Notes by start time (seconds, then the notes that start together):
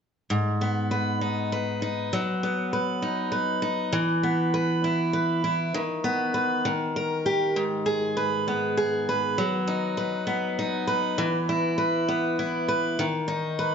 0.30 G#2
0.61 B3
0.91 B4
1.21 D#4
1.52 B4
1.82 D#4
2.13 F#3
2.43 B3
2.73 B4
3.02 D#4
3.32 B4
3.62 D#4
3.93 E3
4.23 B3
4.54 B4
4.84 E4
5.13 B4
5.44 E4
5.74 D#3
6.04 B3
6.34 B4
6.65 D#3
6.96 A#4
7.26 G4
7.56 G#2
7.86 G#4
8.17 B4
8.48 B3
8.77 G#4
9.09 B4
9.38 F#3
9.68 D#4
9.97 B4
10.27 B3
10.59 D#4
10.87 B4
11.18 E3
11.49 E4
11.78 B4
12.09 B3
12.39 E4
12.68 B4
12.99 D#3
13.28 D#4
13.59 B4